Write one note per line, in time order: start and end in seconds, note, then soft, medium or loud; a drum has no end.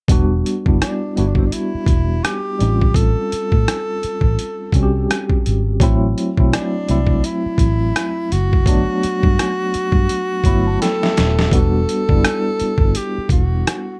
0.08 0.41 E1 medium
0.08 0.50 G3 medium
0.08 0.50 B3 medium
0.08 0.51 D4 medium
0.08 0.51 F#4 loud
0.08 kick medium
0.08 closed hi-hat medium
0.46 closed hi-hat medium
0.66 0.80 F#1 medium
0.66 1.05 G3 soft
0.66 1.05 B3 soft
0.66 1.06 D4 medium
0.66 1.06 E4 medium
0.66 kick medium
0.82 1.19 D4 medium
0.82 cross-stick medium
0.82 closed hi-hat medium
1.16 1.49 G1 medium
1.16 2.23 G3 medium
1.16 2.24 B3 medium
1.16 2.24 D4 medium
1.16 1.29 E4 medium
1.16 2.25 F#4 medium
1.16 closed hi-hat soft
1.28 1.40 D4 medium
1.35 1.48 C4 medium
1.35 kick medium
1.46 1.55 D4 medium
1.52 2.25 E4 medium
1.52 closed hi-hat medium
1.75 muted fingered electric bass stroke soft
1.86 2.20 E1 medium
1.86 kick medium
1.86 closed hi-hat soft
2.24 2.97 G4 medium
2.24 cross-stick medium
2.24 closed hi-hat medium
2.59 2.92 A1 medium
2.59 3.74 G3 medium
2.59 3.75 C4 medium
2.59 3.75 C#4 medium
2.59 2.68 D#4 medium
2.59 closed hi-hat soft
2.68 3.79 F4 medium
2.81 kick medium
2.94 3.14 A1 medium
2.94 5.09 A4 medium
2.94 kick medium
2.94 closed hi-hat medium
3.32 muted fingered electric bass stroke soft
3.32 closed hi-hat medium
3.52 3.65 A2 medium
3.52 kick medium
3.68 cross-stick medium
3.68 closed hi-hat medium
4.03 muted fingered electric bass stroke soft
4.03 closed hi-hat soft
4.21 4.36 A1 medium
4.21 kick medium
4.39 closed hi-hat medium
4.72 5.05 C2 medium
4.72 5.55 G3 medium
4.72 5.55 C4 medium
4.72 5.56 C#4 medium
4.72 4.82 F#4 medium
4.72 kick medium
4.72 closed hi-hat soft
4.83 5.60 G4 medium
5.11 cross-stick medium
5.11 closed hi-hat medium
5.30 kick medium
5.46 5.78 G#1 medium
5.46 closed hi-hat soft
5.80 6.13 A1 medium
5.80 6.21 F#3 medium
5.80 6.22 A3 medium
5.80 6.22 C4 medium
5.80 6.22 E4 loud
5.80 kick loud
5.80 closed hi-hat medium
6.18 closed hi-hat soft
6.37 6.51 B1 medium
6.37 6.76 F#3 medium
6.37 6.77 A3 medium
6.37 6.77 C4 medium
6.37 6.78 E4 medium
6.37 kick medium
6.53 7.27 D4 medium
6.53 cross-stick medium
6.53 closed hi-hat medium
6.88 7.21 C2 medium
6.88 7.95 F#3 medium
6.88 7.95 A3 medium
6.88 7.96 C4 medium
6.88 7.96 E4 medium
6.88 closed hi-hat soft
7.07 kick medium
7.24 8.34 E4 medium
7.24 closed hi-hat medium
7.46 muted fingered electric bass stroke soft
7.58 7.91 A1 medium
7.58 kick medium
7.58 closed hi-hat soft
7.96 cross-stick medium
7.96 closed hi-hat medium
8.32 8.67 F#1 medium
8.32 10.81 F#4 loud
8.32 closed hi-hat soft
8.53 kick medium
8.66 8.85 G1 medium
8.66 9.73 F#3 medium
8.66 9.74 A3 medium
8.66 9.74 B3 medium
8.66 9.75 D4 medium
8.66 kick loud
8.66 closed hi-hat medium
9.03 muted fingered electric bass stroke soft
9.03 closed hi-hat medium
9.23 9.37 G2 medium
9.23 kick medium
9.39 cross-stick medium
9.39 closed hi-hat medium
9.74 muted fingered electric bass stroke soft
9.74 closed hi-hat soft
9.92 10.07 G2 medium
9.92 kick medium
10.09 closed hi-hat medium
10.44 10.77 G1 medium
10.44 11.26 F#3 medium
10.44 11.27 A3 medium
10.44 11.27 B3 medium
10.44 10.65 B5 medium
10.44 kick medium
10.44 closed hi-hat soft
10.48 11.28 E4 medium
10.67 10.80 A5 medium
10.82 11.49 A4 loud
10.82 11.00 G5 medium
10.82 snare soft
10.82 closed hi-hat medium
11.03 11.49 E5 medium
11.03 snare medium
11.17 11.49 D#1 medium
11.17 snare medium
11.17 closed hi-hat soft
11.39 snare medium
11.51 11.84 E1 medium
11.51 11.93 G3 medium
11.51 11.93 B3 medium
11.51 11.94 D4 medium
11.51 11.94 F#4 medium
11.51 12.98 A4 loud
11.51 kick loud
11.51 closed hi-hat medium
11.89 closed hi-hat medium
12.09 12.23 F#1 medium
12.09 13.15 G3 medium
12.09 13.16 B3 medium
12.09 13.16 D4 medium
12.09 13.17 E4 medium
12.09 kick medium
12.25 cross-stick loud
12.25 closed hi-hat medium
12.60 muted fingered electric bass stroke soft
12.60 closed hi-hat medium
12.78 12.93 G1 medium
12.78 kick medium
12.95 13.31 G4 medium
12.95 closed hi-hat medium
13.18 muted fingered electric bass stroke soft
13.29 13.62 E1 medium
13.29 13.99 F#4 medium
13.29 kick medium
13.29 closed hi-hat medium
13.67 cross-stick medium
13.67 closed hi-hat medium